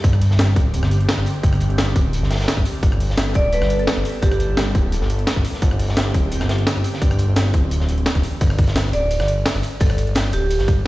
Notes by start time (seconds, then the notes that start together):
0.04 G1 D3 C4 G4, kick, closed hi-hat
0.13 cross-stick
0.21 closed hi-hat, open hi-hat
0.30 G1, snare
0.39 snare, closed hi-hat
0.56 D1, kick, closed hi-hat
0.74 closed hi-hat
0.83 G1, cross-stick, snare
0.91 closed hi-hat
1.00 closed hi-hat
1.09 snare, closed hi-hat
1.18 G1, cross-stick
1.26 closed hi-hat, open hi-hat
1.43 G1, kick, closed hi-hat
1.53 cross-stick, closed hi-hat
1.60 closed hi-hat
1.70 G1, closed hi-hat
1.78 snare, closed hi-hat
1.96 D1, kick, closed hi-hat
2.13 closed hi-hat
2.22 G1, snare
2.31 snare, closed hi-hat
2.35 snare, closed hi-hat
2.40 snare, closed hi-hat
2.44 snare, closed hi-hat
2.48 snare, closed hi-hat
2.57 G1, kick, cross-stick
2.65 closed hi-hat, open hi-hat
2.83 G1 G3 B3 A4, kick, closed hi-hat
2.92 cross-stick
3.00 closed hi-hat, open hi-hat
3.09 G1, snare
3.18 snare, closed hi-hat
3.34 D1 D5, kick, closed hi-hat
3.53 B4, closed hi-hat
3.62 G1, cross-stick, snare
3.70 closed hi-hat
3.79 A4, closed hi-hat
3.87 A4, snare, closed hi-hat
3.97 G1, cross-stick
4.05 closed hi-hat, open hi-hat
4.22 G1 G4, kick, closed hi-hat
4.32 cross-stick, closed hi-hat
4.40 closed hi-hat
4.49 G1
4.57 snare, closed hi-hat
4.75 D1, kick, closed hi-hat
4.92 closed hi-hat
5.01 G1, snare
5.10 closed hi-hat
5.19 closed hi-hat
5.27 snare, closed hi-hat
5.36 G1, kick, cross-stick
5.45 closed hi-hat, open hi-hat
5.54 snare
5.62 G1 D3 C4 G4, kick, closed hi-hat
5.71 cross-stick
5.79 closed hi-hat, open hi-hat
5.88 G1, snare
5.97 snare, closed hi-hat
6.14 D1, kick, closed hi-hat
6.32 closed hi-hat
6.40 G1, cross-stick, snare
6.49 snare, closed hi-hat
6.58 closed hi-hat
6.67 snare, closed hi-hat
6.76 G1, cross-stick
6.84 closed hi-hat, open hi-hat
6.94 snare
7.01 G1 C4, kick, closed hi-hat
7.11 cross-stick, closed hi-hat
7.19 closed hi-hat
7.28 G1
7.36 snare, closed hi-hat
7.53 D1, kick, closed hi-hat
7.71 E3 C4, closed hi-hat
7.80 D1, snare
7.89 closed hi-hat
7.98 closed hi-hat
8.06 snare, closed hi-hat
8.15 D1, kick, cross-stick, closed hi-hat
8.23 closed hi-hat, open hi-hat
8.41 G1, kick, closed hi-hat, ride
8.50 cross-stick
8.58 kick, closed hi-hat, open hi-hat, ride
8.67 G1, snare, closed hi-hat
8.76 snare, closed hi-hat, ride
8.93 D1 D5, closed hi-hat, ride
9.11 closed hi-hat, ride
9.20 G1, cross-stick, snare, closed hi-hat
9.28 closed hi-hat, ride
9.46 snare, closed hi-hat, ride
9.55 G1, cross-stick
9.63 closed hi-hat, open hi-hat, ride
9.80 G1 A4, kick, closed hi-hat, ride
9.90 cross-stick, closed hi-hat
9.98 closed hi-hat, ride
10.07 G1, closed hi-hat
10.15 snare, closed hi-hat, ride
10.33 D1 G4, closed hi-hat, ride
10.51 closed hi-hat, ride
10.59 G1, snare, closed hi-hat
10.68 kick, closed hi-hat, ride